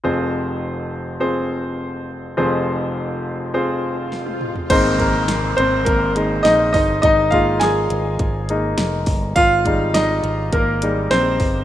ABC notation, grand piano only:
X:1
M:4/4
L:1/8
Q:1/4=103
K:Fm
V:1 name="Grand piano"
[CFAc]3 z [CFAc]3 z | [CFAc]3 z [CFAc]3 z | [Cc] [B,B]2 [Cc] [B,B]2 [Ee] [Ee] | [Ee] [Ff] [Aa]4- [Aa] z |
[Ff]2 [Ee]2 [B,B]2 [Cc]2 |]
V:2 name="Grand piano" clef=bass
[F,,,F,,]8 | [F,,,F,,]8 | [A,B,E]3 z2 [A,B,E] z2 | z [A,B,E]3 z [A,B,E] z2 |
z [G,A,E]3 z [G,A,E] z2 |]